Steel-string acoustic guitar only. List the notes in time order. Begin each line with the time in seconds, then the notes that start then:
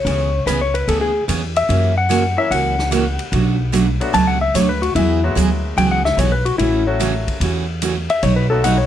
0.06 C#3 E3 B3 C#4 G#4
0.47 C#3 E3 B3 C#4 G#4
0.88 C#3 E3 B3 C#4 G#4
1.28 C#3 E3 B3 C#4 G#4
1.69 C#3 E3 A#3 C#4 F#4
2.09 C#3 E3 A#3 C#4 F#4
2.51 C#3 E3 A#3 C#4 F#4
2.91 C#3 E3 A#3 C#4 F#4
3.32 B2 F#3 A3 D4 F#4
3.72 B2 F#3 A3 D4 F#4
4.13 B2 F#3 A3 D4 F#4
4.54 B2 F#3 A3 D4 F#4
4.96 E3 F#3 B3 F#4 G#4
5.35 E3 F#3 B3 F#4 G#4
5.77 E3 F#3 B3 F#4 G#4
6.18 E3 F#3 B3 F#4 G#4
6.59 C#3 E3 A3 C#4 F#4
7.00 C#3 E3 A3 C#4 F#4
7.41 C#3 E3 A3 C#4 F#4
7.82 C#3 E3 A3 C#4 F#4
8.23 B2 F#3 A3 D#4 F#4
8.64 B2 F#3 A3 D#4 F#4